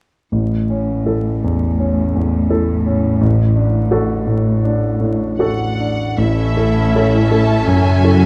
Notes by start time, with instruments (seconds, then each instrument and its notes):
0.32 grand piano A1, cello section A2
0.70 grand piano C#4
1.06 grand piano E4 A4
1.44 grand piano E2
1.79 grand piano C#4
2.15 grand piano E2
2.50 grand piano E4 A4
2.86 grand piano C#4
3.21 grand piano A1
3.56 grand piano D4
3.91 grand piano F#4 A4
4.27 grand piano A2
4.64 grand piano D4
5.00 grand piano A2
5.39 grand piano F#4 A4, violin section F#5
5.80 grand piano D4
6.17 grand piano A1, double bass section A1, cello section A2, viola section C#4 E4, violin section A4 E5
6.57 grand piano E4 A4
6.95 grand piano C#4 E4 A4
7.30 grand piano E4 A4, violin section A5
7.67 double bass section F#1, grand piano F#2, cello section F#2, viola section F#4, violin section G#5
8.04 grand piano E4 A4